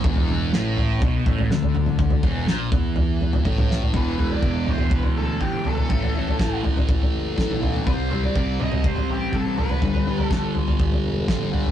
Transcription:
0.04 E1 E2, kick, floor tom
0.16 floor tom
0.29 mid tom
0.53 A1 A2, snare
0.77 floor tom
1.02 B1 B2, kick, floor tom
1.26 A1 A2, kick, floor tom
1.38 floor tom
1.50 D2 D3, snare, floor tom
1.63 floor tom
1.75 floor tom
1.86 mid tom
1.99 kick, floor tom
2.10 floor tom
2.23 E1 E2, kick
2.47 A#1 A#2, snare
2.72 E2 E3, kick, floor tom
2.96 floor tom
3.21 floor tom
3.33 floor tom
3.44 A1 A2, kick, floor tom
3.58 floor tom, mid tom
3.71 snare
3.82 floor tom
3.93 E1 E2 B2 E3 B4, kick, floor tom
4.18 B2 E3, floor tom
4.30 D5, floor tom
4.42 E1 E2 B2 E3, kick
4.66 B2 E3 C5, floor tom, mid tom
4.78 E1, floor tom
4.90 kick, floor tom
4.95 B4
5.03 floor tom
5.16 D2 A4
5.40 E2 B2 E3 G4, kick, mid tom
5.53 G1
5.64 B2 E3 A4, floor tom
5.78 floor tom
5.89 A1 A2 E3 A3, kick, floor tom
6.03 floor tom
6.14 E3 A3, floor tom
6.27 floor tom
6.39 A1 A2 E3 A3, kick, snare
6.63 E3 A3, floor tom
6.76 A1, floor tom
6.89 kick, floor tom
7.02 floor tom
7.13 F#1
7.37 A2 E3 A3, kick, snare, mid tom
7.49 B1, mid tom
7.61 E3 A3, floor tom
7.75 floor tom
7.85 C2 C3 G3 C4 C5, kick, floor tom
8.10 G3 C4, floor tom
8.23 D5, floor tom
8.35 C2 C3 G3 C4, kick
8.60 G3 C4 D#5, floor tom, mid tom
8.72 C2, floor tom
8.84 C5, kick, floor tom
8.96 floor tom
9.08 A1 G4
9.32 C3 G3 C4 A4, kick, mid tom
9.45 A1
9.58 G3 C4 B4, floor tom
9.70 floor tom
9.82 G1 G2 D3 G3, kick, floor tom
9.95 floor tom
10.06 D3 G3, floor tom
10.18 floor tom
10.24 A4
10.30 G1 G2 D3 G3, kick, snare
10.55 D3 G3, floor tom
10.67 G1, floor tom
10.80 kick, floor tom
10.92 floor tom
11.04 E1
11.28 G2 D3 G3, kick, snare, mid tom
11.40 G1, mid tom
11.52 D3 G3, floor tom
11.66 floor tom

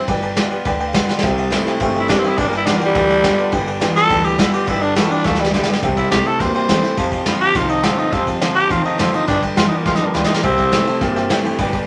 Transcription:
0.08 G1 G3 B4 D5 G5, kick, ride
0.22 B4 D5 G5, ride
0.36 G3 B3 F4 B4 D5 G5, snare, ride
0.50 B3 F4 B4 D5 G5, muted upright bass stroke, ride
0.65 D2 D3 B4 D5 G5, kick, ride
0.79 B4 D5 G5, ride
0.87 F5
0.93 G3 B3 F4 B4 D5 G5, kick, snare, ride
1.08 B3 F4 B4 D5 G5, muted upright bass stroke, snare
1.19 C3 C5, snare
1.23 C2 C3 G3 E5 G5, kick, ride
1.37 C5 E5 G5, ride
1.50 C3 E3 G3 A3 C4 E4 C5 E5 G5, snare, ride
1.64 C4 E4 C5 E5 G5, muted upright bass stroke, snare, ride
1.80 G1 G2 C3 A3 C5 E5 G5, kick, ride
1.95 C5 E5 G5, ride
2.00 E4
2.08 C3 E3 G3 C4 D4 E4 C5 E5 G5, kick, snare, ride
2.18 C4
2.23 C4 E4 C5 E5 G5, muted upright bass stroke, ride
2.28 E4
2.37 G1 G2 D3 G3 D4 B4 D5 G5, kick, ride
2.48 A#3
2.52 B4 D5 G5, ride
2.57 E4
2.66 G2 E3 G3 B3 D4 F4 B4 D5 G5, snare, ride
2.76 A#3 B4
2.81 D5 G5, muted upright bass stroke, ride
2.85 G3
2.94 D2 G2 D3 E3 B4 D5 G5, kick, ride
3.08 B4 D5 G5, ride
3.23 G2 D3 G3 B3 F4 B4 D5 G5, kick, snare, ride
3.37 B3 F4 B4 D5 A5, muted upright bass stroke, ride
3.51 G1 G2 D3 G3 B4 D5 G5, kick, ride
3.66 B4 D5 G5, ride
3.80 G2 E3 G3 B3 F4 B4 D5 G5, snare, ride
3.95 B3 F4 A4 B4 D5 G5, muted upright bass stroke, snare, ride
4.09 D2 G2 D3 E3 B4 D5 G5, kick, ride
4.24 G4 B4 D5 G5, ride
4.38 G2 D3 G3 B3 E4 F4 B4 D5 G5, kick, snare, ride
4.53 B3 F4 G4 B4 D5 G5, muted upright bass stroke, ride
4.67 G1 G2 D3 G3 E4 B4 D5 G5, kick, ride
4.82 D4 B4 D5 A5, ride
4.95 G2 E3 G3 A3 B3 F4 B4 D5 G5, snare, ride
5.10 B3 D4 F4 B4 D5 G5, muted upright bass stroke, ride
5.24 D2 G2 E3 A3 B4 D5 F5, kick, snare
5.35 snare
5.40 G3 B4 D5 G5
5.44 snare
5.54 G2 D3 G3 B4 D5 E5, kick, snare
5.63 snare
5.68 B4 D5 G5, muted upright bass stroke
5.73 snare
5.83 C2 C3 G3 C5 E5 G5, kick, ride
5.97 E4 C5 E5, muted upright bass stroke, kick, ride
6.11 C2 C3 E3 G3 A3 C4 E4 G4 C5 E5 G5, snare, ride
6.26 C4 E4 A4 C5 E5 A5, muted upright bass stroke, ride
6.40 D2 G2 C3 A#3 C5 E5 G5, kick, snare, ride
6.54 C5 E5 G5, muted upright bass stroke, ride
6.68 E2 C3 E3 G3 A3 C4 E4 C5 E5 G5, snare, ride
6.83 C4 E4 C5 E5 G5, muted upright bass stroke, snare, ride
6.97 F2 C3 C5 F5 A5, kick, snare, ride
7.12 C5 F5 A5, kick, ride
7.26 F2 D3 F3 A3 C4 F4 C5 F5 B5, snare, ride
7.40 C4 F4 G4 C5 F5 A5, muted upright bass stroke, ride
7.54 C2 F2 C3 D#3 F4 C5 F5 A5, kick, snare, ride
7.69 D#4 C5 F5 A5, ride
7.83 F2 D3 F3 A3 C4 F4 C5 F5 A5, snare, ride
7.98 D#4 C5 F5 A5, muted upright bass stroke, ride
8.12 F2 C3 C4 C5 F5 A5, kick, snare, ride
8.26 C5 F5 A5, kick, ride
8.41 F2 D3 F3 A3 C4 F4 C5 F5 A5, snare, ride
8.55 C4 F4 G4 C5 F5 A5, muted upright bass stroke, ride
8.69 E2 F2 C3 D#3 F4 C5 F5 A5, kick, snare, ride
8.83 D#4 C5 F5 A5, muted upright bass stroke, ride
8.98 F2 D3 F3 A3 C4 F4 C5 F5 A5, snare, ride
9.12 C4 D#4 F4 C5 F5 A5, muted upright bass stroke, ride
9.27 G2 D3 G3 D4 B4 D5 G5, kick, snare, ride
9.42 B4 D5 G5, muted upright bass stroke, kick, ride
9.56 F2 G2 E3 G3 B3 F4 B4 D5 G5, snare, ride
9.68 D#4 B4 D5, muted upright bass stroke, ride
9.72 G5
9.77 A#3
9.85 E2 G2 D3 F3 F4 B4 D5 G5, kick, snare
9.95 D#4, snare
10.00 B4 D5 A5, muted upright bass stroke
10.06 A#3
10.14 D2 G2 E3 G3 B3 F4 B4 D5 G5, snare
10.24 D#4, snare
10.28 B3 F4 B4 D5 G5, muted upright bass stroke
10.34 A#3, snare
10.43 C2 C3 G3 C4 C5 E5 G5, kick, ride
10.58 C5 E5 G5, kick, ride
10.72 C3 E3 G3 A3 C4 E4 C5 E5 G5, snare, ride
10.86 C4 E4 C5 E5 A5, muted upright bass stroke, ride
11.01 G1 G2 C3 A#3 C5 E5 G5, kick, snare, ride
11.15 C5 E5 G5, snare, ride
11.29 C3 E3 G3 A3 C4 E4 C5 E5 G5, snare, ride
11.44 C4 E4 C5 E5 G5, muted upright bass stroke, ride
11.58 G1 G2 D3 G3 B4 D5 G5, kick, ride
11.73 B4 D5 G5, kick, ride

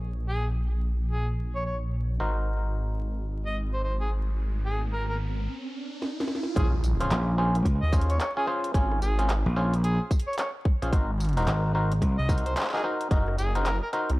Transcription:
Already playing: A#1 C#4 F4 G#4 C5
0.29 G#4
1.11 G#4
1.55 C#5
1.66 C#5
2.20 G#1 D#4 F#4 A#4 C5, riser
3.46 D#5
3.73 C5
3.84 C5
4.00 G#4
4.66 G#4
4.93 A#4
5.10 A#4
6.02 snare
6.20 snare
6.28 snare
6.35 snare
6.43 snare
6.56 A#1 C#4 F4 G#4 C5, kick, closed hi-hat, impact
6.84 closed hi-hat, tambourine
7.01 C#4 F4 G#4 C5, closed hi-hat
7.11 A#1, clap, closed hi-hat
7.38 C#4 F4 G#4 C5
7.55 closed hi-hat
7.65 C#2, kick, closed hi-hat
7.82 D#2 D#5
7.93 C#4 F4 G#4 C5, kick, cross-stick, closed hi-hat, tambourine
8.01 closed hi-hat
8.10 C#5, closed hi-hat
8.20 C#5, clap, closed hi-hat
8.37 C#4 F4 G#4 C#5
8.47 C#4 F4 G#4 C5
8.64 closed hi-hat
8.74 G#1 C#4 F4 G#4 C#5, kick, closed hi-hat
8.92 cross-stick
9.02 G#1 G#4, closed hi-hat, tambourine
9.19 C#4 F4 G#4 C5, cross-stick, closed hi-hat
9.29 clap, closed hi-hat
9.46 A#1
9.56 C#4 F4 G#4 C5
9.73 closed hi-hat
9.84 G#4, closed hi-hat
10.11 kick, closed hi-hat, tambourine
10.20 closed hi-hat
10.27 C#5
10.33 closed hi-hat
10.38 C#5, clap, closed hi-hat
10.65 kick
10.82 A#1 C#4 F4 G#4 C5, closed hi-hat
10.93 G#1 D#4 F#4 A#4 C5, kick, closed hi-hat
11.20 closed hi-hat, tambourine
11.24 closed hi-hat
11.29 closed hi-hat
11.33 closed hi-hat
11.37 D#4 F#4 A#4 C5, closed hi-hat
11.40 closed hi-hat
11.42 closed hi-hat
11.45 G#1, clap, closed hi-hat
11.47 closed hi-hat
11.75 D#4 F#4 A#4 C5
11.92 closed hi-hat
12.02 C2, kick, closed hi-hat
12.19 C2 D#5
12.29 D#4 F#4 A#4 C5, kick, cross-stick, closed hi-hat, tambourine
12.38 closed hi-hat
12.46 C5, closed hi-hat
12.57 C5, clap, closed hi-hat
12.61 clap
12.65 clap
12.69 G#4, clap
12.73 D#4 F#4 A#4 D#5, clap
12.76 clap
12.79 clap
12.81 D#4 F#4 A#4 C5, clap
13.01 closed hi-hat
13.11 F#1 D#4 F#4 A#4 D#5, kick, closed hi-hat
13.28 cross-stick
13.38 F#1 G#4, closed hi-hat, tambourine
13.55 D#4 F#4 A#4 C5, cross-stick, closed hi-hat
13.66 A#4, clap, closed hi-hat
13.83 A#4
13.93 D#4 F#4 A#4 C5, closed hi-hat
14.10 C2, closed hi-hat

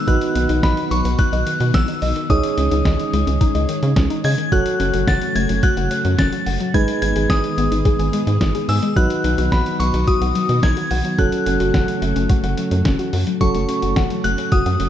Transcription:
Already playing: D#3 B3
0.08 B1 D#3 F#3 D#4 F#4 B4 F#6, kick, closed hi-hat
0.21 closed hi-hat
0.35 B1 B3, closed hi-hat
0.49 B1 D#4, closed hi-hat
0.63 B1 D#5 B5, kick, snare, closed hi-hat
0.77 closed hi-hat
0.91 B1 F#3 C#6, closed hi-hat
1.05 B1 B3, closed hi-hat
1.19 D#4 F#6, kick, closed hi-hat
1.33 B1 D#5, closed hi-hat
1.47 D#3, closed hi-hat
1.60 B2, closed hi-hat
1.74 B1 B3 E6, kick, snare, closed hi-hat
1.88 D#4, closed hi-hat
2.02 B1 D#5, open hi-hat
2.16 D#3, closed hi-hat
2.30 C#2 D#3 G#3 C#4 D#4 G#4 C#5 D#6, kick, closed hi-hat
2.43 closed hi-hat
2.58 C#2 C#4, closed hi-hat
2.71 C#2 D#4, closed hi-hat
2.85 C#2 D#5, kick, snare, closed hi-hat
2.99 closed hi-hat
3.13 C#2 G#3, closed hi-hat
3.27 C#2 C#4, closed hi-hat
3.41 D#4, kick, closed hi-hat
3.55 C#2 D#5, closed hi-hat
3.69 D#3, closed hi-hat
3.83 C#3, closed hi-hat
3.96 C#2 C#4, kick, snare, closed hi-hat
4.10 D#4, closed hi-hat
4.24 C#3 D#5 G#6, open hi-hat
4.38 D#3, closed hi-hat
4.52 F#1 C#3 F#3 A3 F#4 A4 C#5 F#6, kick, closed hi-hat
4.66 closed hi-hat
4.80 F#1 C#4, closed hi-hat
4.94 F#1 F#4, closed hi-hat
5.07 F#1 F#5 A6, kick, snare, closed hi-hat
5.21 closed hi-hat
5.35 F#1 A3 G#6, closed hi-hat
5.49 F#1 C#4, closed hi-hat
5.63 F#4 F#6, kick, closed hi-hat
5.77 F#1 F#5, closed hi-hat
5.91 F#3, closed hi-hat
6.05 F#2, closed hi-hat
6.19 F#1 C#4 A6, kick, snare, closed hi-hat
6.32 F#4, closed hi-hat
6.46 F#1 F#5, open hi-hat
6.60 F#3, closed hi-hat
6.74 G#1 D#3 G#3 B3 D#4 G#4 B4 G#6, kick, closed hi-hat
6.88 closed hi-hat
7.02 G#1 D#4 G#6, closed hi-hat
7.16 G#1 G#4, closed hi-hat
7.30 G#1 G#5 D#6, kick, snare, closed hi-hat
7.44 closed hi-hat
7.58 G#1 B3, closed hi-hat
7.71 G#1 D#4, closed hi-hat
7.85 G#4, kick, closed hi-hat
7.99 G#1 G#5, closed hi-hat
8.13 G#3, closed hi-hat
8.27 G#2, closed hi-hat
8.41 G#1 D#4, kick, snare, closed hi-hat
8.55 G#4, closed hi-hat
8.69 G#2 G#5 E6, open hi-hat
8.83 G#3, closed hi-hat
8.96 B1 D#3 F#3 D#4 F#4 B4 F#6, kick, closed hi-hat
9.10 closed hi-hat
9.24 B1 D#4, closed hi-hat
9.38 B1 F#4, closed hi-hat
9.52 B1 F#5 B5, kick, snare, closed hi-hat
9.66 closed hi-hat
9.80 B1 B3 C#6, closed hi-hat
9.94 B1 D#4, closed hi-hat
10.07 F#4 D#6, kick, closed hi-hat
10.21 B1 F#5, closed hi-hat
10.35 F#3, closed hi-hat
10.49 B2, closed hi-hat
10.63 B1 D#4 G#6, kick, snare, closed hi-hat
10.77 F#4, closed hi-hat
10.91 B1 F#5, open hi-hat
11.05 F#3, closed hi-hat
11.18 F#1 C#3 F#3 A3 C#4 F#4 A4 F#6, kick, closed hi-hat
11.32 closed hi-hat
11.46 F#1 C#4, closed hi-hat
11.60 F#1 F#4, closed hi-hat
11.74 F#1 F#5, kick, snare, closed hi-hat
11.88 closed hi-hat
12.02 F#1 A3, closed hi-hat
12.16 F#1 C#4, closed hi-hat
12.29 F#4, kick, closed hi-hat
12.44 F#1 F#5, closed hi-hat
12.57 F#3, closed hi-hat
12.71 F#2, closed hi-hat
12.85 F#1 C#4, kick, snare, closed hi-hat
12.99 F#4, closed hi-hat
13.13 F#2 F#5, open hi-hat
13.27 F#3, closed hi-hat
13.41 F#1 C#3 F#3 A3 C#4 F#4 A4 C#6, kick, closed hi-hat
13.54 F#1 A3, closed hi-hat
13.69 C#4, closed hi-hat
13.82 F#1 F#4, closed hi-hat
13.96 F#1 F#5, kick, snare, closed hi-hat
14.10 F#3, closed hi-hat
14.24 F#1 A3 F#6, closed hi-hat
14.38 C#4, closed hi-hat
14.52 F#1 F#4 D#6, kick, closed hi-hat
14.66 F#2 F#5, closed hi-hat
14.80 F#1 F#3, closed hi-hat

